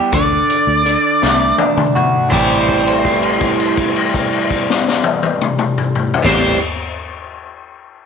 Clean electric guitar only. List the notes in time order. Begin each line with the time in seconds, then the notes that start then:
Already playing: E3 G3 B3 G4
0.12 D3
0.86 D3
1.22 A3
1.59 D4
1.95 F#4
2.29 A2 E3 G3 C4 G4
6.23 A2 E3 G3 C4 G4